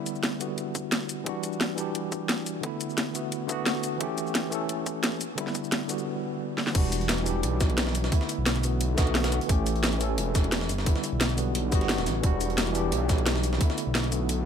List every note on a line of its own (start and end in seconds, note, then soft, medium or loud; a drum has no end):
0.00 0.37 D3 medium
0.00 0.38 G3 medium
0.00 0.39 B3 medium
0.00 0.40 E4 loud
0.06 closed hi-hat medium
0.06 shaker medium
0.15 shaker soft
0.23 snare loud
0.23 closed hi-hat medium
0.39 0.54 D3 medium
0.39 0.54 G3 medium
0.39 0.54 B3 medium
0.39 0.55 F#4 medium
0.39 closed hi-hat medium
0.39 shaker medium
0.58 closed hi-hat medium
0.58 shaker soft
0.75 kick loud
0.75 closed hi-hat medium
0.75 shaker medium
0.92 snare loud
0.92 closed hi-hat medium
1.09 closed hi-hat medium
1.09 shaker medium
1.23 1.74 E3 medium
1.23 1.75 G3 medium
1.23 1.76 D4 medium
1.23 kick loud
1.23 closed hi-hat medium
1.29 1.77 F#4 loud
1.43 closed hi-hat medium
1.43 shaker medium
1.53 shaker soft
1.61 snare loud
1.61 closed hi-hat medium
1.75 2.60 E3 medium
1.75 2.61 G3 medium
1.75 2.62 D4 medium
1.75 closed hi-hat medium
1.75 shaker medium
1.80 2.63 G4 medium
1.95 closed hi-hat medium
1.95 shaker soft
2.12 kick loud
2.12 closed hi-hat medium
2.12 shaker medium
2.29 snare loud
2.29 closed hi-hat medium
2.46 closed hi-hat medium
2.46 shaker medium
2.61 3.12 D3 medium
2.61 3.13 A3 medium
2.61 3.14 B3 medium
2.61 kick loud
2.61 closed hi-hat medium
2.66 3.14 E4 medium
2.81 closed hi-hat medium
2.81 shaker medium
2.90 shaker soft
2.98 snare loud
2.98 closed hi-hat medium
3.14 3.28 D3 medium
3.14 3.28 A3 medium
3.14 3.29 B3 medium
3.14 3.29 F#4 medium
3.14 closed hi-hat medium
3.14 shaker medium
3.32 closed hi-hat medium
3.32 shaker soft
3.46 3.97 D3 loud
3.46 3.98 A3 medium
3.46 3.99 B3 medium
3.46 kick loud
3.46 closed hi-hat medium
3.46 shaker medium
3.52 4.00 F#4 loud
3.66 snare loud
3.66 closed hi-hat medium
3.83 closed hi-hat medium
3.83 shaker medium
3.98 4.48 E3 loud
3.98 4.50 A3 medium
3.98 4.51 C#4 medium
3.98 kick loud
3.98 closed hi-hat medium
4.03 4.51 G4 loud
4.18 closed hi-hat medium
4.18 shaker medium
4.27 shaker soft
4.35 snare loud
4.35 closed hi-hat medium
4.49 5.18 E3 medium
4.49 5.19 A3 medium
4.49 5.20 C#4 medium
4.49 closed hi-hat medium
4.49 shaker medium
4.55 5.21 A4 loud
4.69 closed hi-hat medium
4.69 shaker soft
4.86 kick loud
4.86 closed hi-hat medium
4.86 shaker medium
5.04 snare loud
5.04 closed hi-hat medium
5.21 closed hi-hat medium
5.21 shaker medium
5.35 5.86 D3 medium
5.35 5.87 G3 medium
5.35 5.88 B3 medium
5.35 kick loud
5.35 closed hi-hat medium
5.41 5.89 E4 loud
5.47 snare soft
5.55 kick medium
5.55 closed hi-hat medium
5.55 shaker medium
5.64 shaker soft
5.72 snare loud
5.72 closed hi-hat loud
5.88 6.02 D3 medium
5.88 6.03 G3 medium
5.88 6.03 B3 medium
5.88 6.04 F#4 medium
5.88 closed hi-hat medium
5.88 shaker medium
5.98 shaker soft
6.58 snare medium
6.67 snare medium
6.72 7.45 E1 loud
6.72 7.22 E3 medium
6.72 7.24 G3 medium
6.72 7.25 D4 medium
6.72 kick loud
6.72 closed hi-hat medium
6.72 crash loud
6.77 7.26 F#4 loud
6.92 closed hi-hat medium
6.92 shaker medium
7.01 closed hi-hat soft
7.09 snare loud
7.09 closed hi-hat loud
7.09 closed hi-hat medium
7.18 closed hi-hat soft
7.24 8.09 E3 medium
7.24 8.10 G3 medium
7.24 8.11 D4 medium
7.24 closed hi-hat medium
7.24 shaker medium
7.29 8.12 G4 loud
7.43 8.11 B1 loud
7.43 closed hi-hat medium
7.43 shaker soft
7.61 kick loud
7.61 snare medium
7.61 closed hi-hat medium
7.61 shaker medium
7.70 closed hi-hat soft
7.78 snare loud
7.78 closed hi-hat loud
7.78 closed hi-hat medium
7.87 snare medium
7.95 closed hi-hat medium
7.95 shaker medium
8.04 snare medium
8.09 8.60 D3 medium
8.09 8.61 A3 medium
8.09 8.62 B3 medium
8.09 kick loud
8.09 closed hi-hat medium
8.09 closed hi-hat loud
8.15 8.63 E4 loud
8.21 snare soft
8.29 closed hi-hat medium
8.29 shaker medium
8.38 8.97 B1 loud
8.46 snare loud
8.46 closed hi-hat medium
8.46 closed hi-hat loud
8.56 closed hi-hat soft
8.62 8.76 D3 medium
8.62 8.77 A3 medium
8.62 8.77 B3 medium
8.62 8.78 F#4 medium
8.62 closed hi-hat medium
8.62 shaker medium
8.81 closed hi-hat medium
8.81 shaker soft
8.95 9.40 B1 medium
8.95 9.46 D3 loud
8.95 9.47 A3 medium
8.95 9.48 B3 medium
8.95 kick loud
8.95 snare loud
8.95 closed hi-hat medium
8.95 shaker medium
9.00 9.49 F#4 loud
9.07 closed hi-hat soft
9.15 snare loud
9.15 closed hi-hat medium
9.15 closed hi-hat loud
9.24 snare loud
9.24 closed hi-hat medium
9.32 closed hi-hat medium
9.32 shaker medium
9.41 closed hi-hat medium
9.46 10.19 A1 loud
9.46 9.97 E3 loud
9.46 9.98 A3 medium
9.46 9.99 C#4 medium
9.46 kick loud
9.46 closed hi-hat loud
9.46 closed hi-hat medium
9.52 10.00 G4 loud
9.66 closed hi-hat medium
9.66 shaker medium
9.76 closed hi-hat soft
9.84 snare loud
9.84 closed hi-hat loud
9.84 closed hi-hat medium
9.93 closed hi-hat soft
9.98 10.67 E3 medium
9.98 10.68 A3 medium
9.98 10.69 C#4 medium
9.98 closed hi-hat medium
9.98 shaker medium
10.03 10.70 A4 loud
10.18 10.68 E1 loud
10.18 closed hi-hat loud
10.18 closed hi-hat medium
10.18 shaker soft
10.35 kick loud
10.35 snare medium
10.35 closed hi-hat medium
10.35 shaker medium
10.44 closed hi-hat soft
10.52 snare loud
10.52 closed hi-hat loud
10.52 closed hi-hat medium
10.61 snare medium
10.69 10.94 G1 loud
10.69 closed hi-hat medium
10.69 shaker medium
10.78 snare medium
10.84 11.34 D3 medium
10.84 11.35 G3 medium
10.84 11.36 B3 medium
10.84 kick loud
10.84 closed hi-hat medium
10.89 11.37 E4 medium
10.96 snare soft
11.04 closed hi-hat medium
11.04 shaker medium
11.13 11.74 B1 loud
11.21 snare loud
11.21 closed hi-hat medium
11.30 closed hi-hat soft
11.36 11.51 D3 medium
11.36 11.51 G3 medium
11.36 11.52 B3 medium
11.36 11.52 F#4 medium
11.36 closed hi-hat medium
11.36 shaker medium
11.55 closed hi-hat medium
11.55 shaker soft
11.69 12.00 G1 medium
11.69 12.20 D3 loud
11.69 12.21 G3 medium
11.69 12.22 B3 loud
11.69 kick loud
11.69 closed hi-hat medium
11.69 shaker medium
11.75 12.23 F#4 loud
11.81 snare soft
11.81 closed hi-hat soft
11.89 snare loud
11.89 closed hi-hat medium
11.98 12.08 D1 loud
11.98 snare medium
11.98 closed hi-hat soft
12.06 12.22 A1 medium
12.06 snare soft
12.06 closed hi-hat medium
12.06 shaker medium
12.21 12.94 E1 loud
12.21 12.71 E3 loud
12.21 12.73 G3 medium
12.21 12.74 D4 medium
12.21 kick loud
12.21 closed hi-hat medium
12.26 12.74 F#4 loud
12.41 closed hi-hat medium
12.41 shaker medium
12.50 closed hi-hat soft
12.58 snare loud
12.58 closed hi-hat medium
12.67 closed hi-hat soft
12.72 13.57 E3 medium
12.72 13.58 G3 medium
12.72 13.59 D4 medium
12.72 closed hi-hat medium
12.72 shaker medium
12.78 13.60 G4 loud
12.92 13.59 B1 loud
12.92 closed hi-hat medium
12.92 shaker soft
13.09 kick loud
13.09 snare medium
13.09 closed hi-hat medium
13.09 shaker medium
13.18 closed hi-hat soft
13.26 snare loud
13.26 closed hi-hat medium
13.36 snare medium
13.43 closed hi-hat medium
13.43 shaker medium
13.53 snare medium
13.58 14.09 D3 medium
13.58 14.10 A3 medium
13.58 14.11 B3 medium
13.58 kick loud
13.58 closed hi-hat medium
13.63 14.12 E4 loud
13.70 snare soft
13.78 closed hi-hat medium
13.78 shaker medium
13.87 14.45 B1 loud
13.95 snare loud
13.95 closed hi-hat medium
14.04 closed hi-hat soft
14.11 14.25 D3 medium
14.11 14.26 A3 medium
14.11 14.26 B3 medium
14.11 14.26 F#4 medium
14.11 closed hi-hat medium
14.11 shaker medium
14.29 closed hi-hat medium
14.29 shaker soft